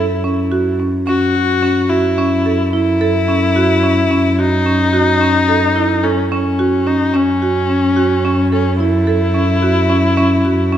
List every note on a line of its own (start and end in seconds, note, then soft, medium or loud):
0.00 1.07 F#2 medium
0.00 0.76 E4 loud
0.00 0.17 A4 medium
0.24 0.45 C#4 medium
0.52 0.72 F#4 medium
0.80 1.00 C#4 medium
1.07 7.14 F#2 medium
1.07 1.28 C#4 medium
1.07 1.91 F#4 loud
1.35 1.55 F#4 medium
1.63 1.83 C#4 medium
1.90 2.73 E4 medium
1.90 2.10 F#4 medium
2.18 2.38 C#4 medium
2.46 2.66 A4 medium
2.73 4.41 E4 loud
2.73 2.94 E4 medium
3.01 3.21 A4 medium
3.28 3.49 C#4 medium
3.56 3.76 F#4 medium
3.83 4.04 C#4 medium
4.11 4.31 C#4 medium
4.39 6.05 D#4 loud
4.39 4.59 F#4 medium
4.66 4.86 C#4 medium
4.93 5.14 F#4 medium
5.21 5.41 C#4 medium
5.48 5.69 A4 medium
5.76 5.96 E4 medium
6.03 6.31 C#4 medium
6.03 6.24 A4 medium
6.31 6.88 C#4 medium
6.31 6.52 C#4 medium
6.59 6.79 F#4 medium
6.87 7.07 C#4 medium
6.87 7.17 D#4 medium
7.14 10.78 F#2 medium
7.14 7.34 C#4 medium
7.14 8.52 C#4 medium
7.42 7.62 F#4 medium
7.70 7.90 C#4 medium
7.96 8.17 F#4 medium
8.25 8.45 C#4 medium
8.52 8.78 C#4 medium
8.52 8.73 A4 medium
8.79 10.78 E4 medium
8.79 9.00 E4 medium
9.07 9.28 A4 medium
9.34 9.55 C#4 medium
9.62 9.83 F#4 medium
9.90 10.10 C#4 medium
10.17 10.38 C#4 medium
10.45 10.65 F#4 medium
10.73 10.78 C#4 medium